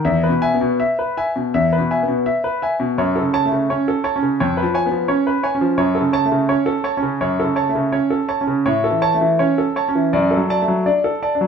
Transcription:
0.05 E2 E5
0.23 B4
0.29 B2
0.42 E5 G#5
0.54 B3
0.61 B2
0.80 E5
0.99 B4
1.17 E5 G#5
1.36 B2
1.54 E2 E5
1.73 B4
1.78 B2
1.91 E5 G#5
2.03 B3
2.08 B2
2.26 E5
2.44 B4
2.62 E5 G#5
2.80 B2
2.98 F#2 C#5
3.16 A4
3.22 C#3
3.34 C#5 A5
3.46 A3
3.52 C#3
3.70 C#4 C#5
3.88 A4
4.04 C#5 A5
4.16 C#4
4.23 C#3
4.40 F2 C#5
4.57 B4
4.63 F3
4.74 C#5 G#5
4.86 B3
4.91 F3
5.08 C#4 C#5
5.27 B4
5.43 C#5 G#5
5.55 C#4
5.61 F3
5.78 F#2 C#5
5.95 A4
6.01 C#3
6.13 C#5 A5
6.26 A3
6.32 C#3
6.49 C#4 C#5
6.66 A4
6.84 C#5 A5
6.97 C#4
7.03 C#3
7.21 F#2 C#5
7.40 A4
7.44 C#3
7.56 C#5 A5
7.69 A3
7.75 C#3
7.92 C#4 C#5
8.10 A4
8.29 C#5 A5
8.41 C#4
8.47 C#3
8.66 A2 C#5
8.84 A4
8.91 E3
9.02 C#5 A5
9.14 A3
9.21 E3
9.39 C#4 C#5
9.58 A4
9.76 C#5 A5
9.88 C#4
9.95 E3
10.13 F#2 D5
10.31 A4
10.37 F#3
10.50 D5 A5
10.62 A3
10.68 F#3
10.86 D4 D5
11.04 A4
11.22 D5 A5
11.35 D4
11.41 F#3

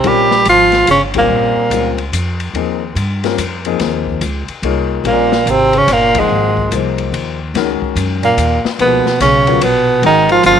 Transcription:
0.04 A#1 G3 C4 C#4 F4 G4 A#4, ride
0.31 snare
0.45 G#1 F3 F4, hi-hat pedal, ride
0.72 snare, ride
0.87 G1 C#3 C#4, hi-hat pedal, ride
1.14 A#2 G3 C4 C#4 F4 A#4, kick, ride
1.18 A#3
1.30 A#1
1.56 muted upright bass stroke
1.70 C#2 G3 C4 C#4 F4 A#4, hi-hat pedal, ride
1.98 ride
2.12 F2, hi-hat pedal, ride
2.40 ride
2.54 D#2 F3 A#3 C4 D#4 G#4, ride
2.95 G2, hi-hat pedal, ride
3.24 G3 C4 C#4 F4 A#4, snare, ride
3.38 F2, hi-hat pedal, ride
3.65 F3 A#3 C4 D#4 G#4, ride
3.80 D#2, snare, ride
4.07 kick
4.21 C#2, hi-hat pedal, ride
4.48 muted upright bass stroke, ride
4.62 C2 A#3 D#4 F4 G#4 C#5, ride
5.04 A#1 A#2 G3 A#3 C4 C#4 F4 A#4, ride
5.32 snare
5.46 G#1 C3, hi-hat pedal, ride
5.50 C4
5.73 C#3, ride
5.78 C#4
5.87 G1 A#2, hi-hat pedal, ride
5.92 A#3
6.15 G#2 F3 A#3 D#4 G#4 D#5, kick, ride
6.20 G#3
6.29 G#1
6.57 kick
6.71 C2 F3 A#3 D#4 G#4 C5, hi-hat pedal, ride
6.98 ride
7.12 D#2, ride
7.54 C#2 D#3 G#3 C#4 F#4 A#4, snare, ride
7.82 muted upright bass stroke, kick
7.96 F#2, hi-hat pedal, ride
8.23 A#2 A#3, ride
8.37 D#2, hi-hat pedal, ride
8.65 muted upright bass stroke, snare
8.79 C#2 B2 F3 A#3 B3 D#4 G#4 B4, ride
9.05 muted upright bass stroke, snare
9.20 B1 C#3 C#4, snare, hi-hat pedal, ride
9.47 F#3 B3 F4 A#4 C#5, kick, ride
9.61 A#1 B2 B3, ride
10.02 G#1 D#3 G#3 C#4 D#4 F#4 A#4, ride
10.29 F3 F4, ride
10.43 F#1 F3 F4, hi-hat pedal, ride

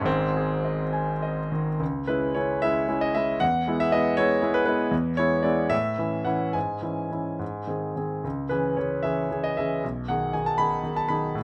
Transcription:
0.01 G#1 G#2
0.06 C4
0.36 G#4
0.65 D#5
0.93 G#5
1.23 D#5
1.52 D#3
1.80 C#2
2.07 G#3 C#4 E4 B4
2.35 G#3 C#4 E4 C#5
2.62 G#3 C#4 E4 E5
2.88 G#3 C#4 E4
3.01 D#5
3.15 G#3 C#4 E4 E5
3.40 E2 F#5
3.67 G#3 B3 E4
3.80 E5
3.92 G#3 B3 E4 D#5
4.17 G#3 B3 E4 C#5
4.42 G#3 B3 E4
4.54 B4
4.66 G#3 B3 E4 B4
4.91 E2
5.17 G#3 B3 E4 C#5
5.43 G#3 B3 E4 D5
5.70 A2 E5
5.98 E3 C#4 E4
6.25 E3 C#4 E4 F#5
6.53 G#2 G#5
6.82 E3 C#4 E4
7.11 E3 C#4 E4
7.39 G#2
7.67 D#3 C4 G#4
7.96 D#3 C4 G#4
8.24 C#2
8.49 E3 C#4 G#4 B4
8.77 E3 C#4 G#4 C#5
9.03 E3 C#4 G#4 E5
9.31 E3 C#4 G#4
9.44 D#5
9.57 E3 C#4 G#4 E5
9.84 B1
10.08 D#3 D#4 G#4 F#5
10.33 D#3 D#4 G#4 G#5
10.46 A5
10.58 D#3 D#4 G#4 B5
10.83 D#3 D#4 G#4
10.96 A5
11.08 D#3 D#4 G#4 B5
11.35 A2

